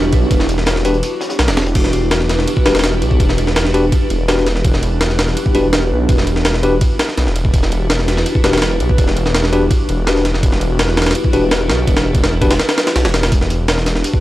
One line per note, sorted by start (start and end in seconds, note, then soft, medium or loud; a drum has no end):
0.00 0.14 E1 medium
0.13 0.29 B1 loud
0.13 kick loud
0.13 ride medium
0.31 1.02 E1 loud
0.31 kick loud
0.31 closed hi-hat medium
0.31 ride medium
0.40 snare medium
0.49 closed hi-hat medium
0.49 ride medium
0.58 snare medium
0.66 snare loud
0.66 closed hi-hat medium
0.66 ride medium
0.76 snare medium
0.85 0.96 D4 medium
0.85 0.96 F#4 medium
0.85 0.96 G4 medium
0.85 0.96 B4 loud
0.85 closed hi-hat medium
0.85 ride medium
0.94 closed hi-hat soft
1.03 closed hi-hat medium
1.03 ride medium
1.21 snare loud
1.21 closed hi-hat medium
1.29 snare loud
1.29 closed hi-hat medium
1.39 1.50 B1 medium
1.39 snare loud
1.39 closed hi-hat medium
1.39 ride medium
1.48 1.74 E1 loud
1.48 snare loud
1.48 ride medium
1.57 snare loud
1.57 open hi-hat medium
1.57 ride medium
1.66 snare loud
1.66 closed hi-hat medium
1.75 2.46 E1 loud
1.75 kick loud
1.75 crash medium
1.75 ride medium
1.84 snare medium
1.93 ride medium
2.11 snare loud
2.11 ride medium
2.20 snare soft
2.29 snare medium
2.29 ride medium
2.39 snare medium
2.47 ride medium
2.57 kick loud
2.66 3.03 E1 medium
2.66 2.77 D4 medium
2.66 2.77 F#4 medium
2.66 2.77 G4 medium
2.66 2.77 B4 medium
2.66 snare loud
2.66 ride medium
2.75 snare medium
2.75 ride medium
2.79 snare medium
2.79 ride medium
2.84 snare loud
2.84 ride medium
3.02 3.18 B1 loud
3.02 ride medium
3.11 kick medium
3.20 3.91 E1 loud
3.20 kick loud
3.20 ride medium
3.29 snare medium
3.38 ride medium
3.47 snare medium
3.56 snare loud
3.56 ride medium
3.65 snare medium
3.74 3.85 D4 medium
3.74 3.85 F#4 medium
3.74 3.85 G4 medium
3.74 3.85 B4 loud
3.74 ride medium
3.92 kick loud
3.92 ride medium
4.10 4.63 E1 medium
4.10 ride medium
4.28 4.46 D4 medium
4.28 4.45 F#4 medium
4.28 4.46 G4 medium
4.28 4.46 B4 medium
4.28 snare loud
4.28 ride medium
4.38 snare soft
4.47 snare medium
4.47 ride medium
4.56 snare soft
4.65 5.35 E1 loud
4.65 kick loud
4.65 ride medium
4.74 snare medium
4.83 ride medium
5.01 snare loud
5.01 ride medium
5.10 snare soft
5.19 snare loud
5.19 ride medium
5.28 snare soft
5.37 ride medium
5.46 kick medium
5.55 5.92 E1 medium
5.55 5.66 D4 medium
5.55 5.66 F#4 medium
5.55 5.66 G4 medium
5.55 5.66 B4 loud
5.55 ride medium
5.73 snare loud
5.73 ride medium
5.91 6.07 B1 loud
6.09 6.80 E1 loud
6.09 kick loud
6.09 ride medium
6.18 snare medium
6.27 ride medium
6.36 snare medium
6.45 snare loud
6.45 ride medium
6.54 snare medium
6.63 6.74 D4 medium
6.63 6.74 F#4 medium
6.63 6.74 G4 medium
6.63 6.74 B4 loud
6.63 ride medium
6.81 kick loud
6.81 ride medium
6.99 snare loud
6.99 ride medium
7.09 snare soft
7.17 7.28 B1 medium
7.17 snare medium
7.17 ride medium
7.27 7.52 E1 loud
7.27 snare soft
7.36 ride medium
7.45 kick medium
7.54 8.25 E1 loud
7.54 kick loud
7.54 ride medium
7.63 snare medium
7.72 ride medium
7.90 snare loud
7.90 ride medium
7.99 snare soft
8.08 snare medium
8.08 ride medium
8.17 snare medium
8.26 ride medium
8.35 kick loud
8.44 8.82 E1 medium
8.44 8.55 D4 medium
8.44 8.55 F#4 medium
8.44 8.55 G4 medium
8.44 8.55 B4 loud
8.44 snare loud
8.44 ride medium
8.53 snare medium
8.53 ride medium
8.58 snare medium
8.58 ride medium
8.62 snare loud
8.62 ride medium
8.80 8.97 B1 loud
8.80 ride medium
8.89 kick loud
8.98 9.69 E1 loud
8.98 kick loud
8.98 ride medium
9.08 snare medium
9.17 ride medium
9.26 snare medium
9.35 snare loud
9.35 ride medium
9.44 snare medium
9.53 9.63 D4 medium
9.53 9.63 F#4 medium
9.53 9.63 G4 medium
9.53 9.63 B4 loud
9.53 ride medium
9.71 kick loud
9.71 ride medium
9.89 10.41 E1 medium
9.89 ride medium
10.07 10.24 D4 medium
10.07 10.24 F#4 medium
10.07 10.24 G4 medium
10.07 10.24 B4 medium
10.07 snare loud
10.07 ride medium
10.16 snare soft
10.25 snare medium
10.25 ride medium
10.34 snare soft
10.43 11.14 E1 loud
10.43 kick loud
10.43 ride medium
10.52 snare medium
10.61 ride medium
10.79 snare loud
10.79 ride medium
10.89 snare soft
10.97 snare loud
10.97 ride medium
11.02 snare medium
11.02 ride medium
11.06 snare medium
11.06 ride medium
11.11 snare medium
11.11 ride medium
11.15 ride medium
11.24 kick loud
11.33 11.71 E1 medium
11.33 11.44 D4 medium
11.33 11.44 F#4 medium
11.33 11.44 G4 medium
11.33 11.44 B4 medium
11.33 ride medium
11.51 snare loud
11.51 ride medium
11.69 11.86 B1 loud
11.69 snare loud
11.69 ride medium
11.87 12.58 E1 loud
11.87 kick loud
11.87 ride medium
11.97 snare loud
11.97 ride medium
12.15 kick loud
12.15 ride medium
12.24 snare loud
12.24 ride medium
12.42 12.52 D4 medium
12.42 12.52 F#4 medium
12.42 12.53 G4 medium
12.42 12.53 B4 loud
12.42 kick loud
12.42 ride medium
12.51 snare loud
12.51 ride medium
12.60 snare loud
12.60 ride medium
12.69 snare loud
12.69 ride medium
12.78 snare loud
12.78 ride medium
12.87 snare loud
12.87 ride medium
12.96 13.07 B1 medium
12.96 snare loud
12.96 ride medium
13.05 13.31 E1 loud
13.05 snare loud
13.05 ride medium
13.14 snare loud
13.14 ride medium
13.23 snare loud
13.23 ride medium
13.32 14.03 E1 loud
13.32 kick loud
13.32 closed hi-hat medium
13.32 ride medium
13.41 snare medium
13.50 closed hi-hat medium
13.50 ride medium
13.68 snare loud
13.68 closed hi-hat medium
13.68 ride medium
13.77 snare soft
13.86 snare medium
13.86 closed hi-hat medium
13.86 ride medium
13.96 snare medium
14.04 closed hi-hat medium
14.04 ride medium
14.14 kick loud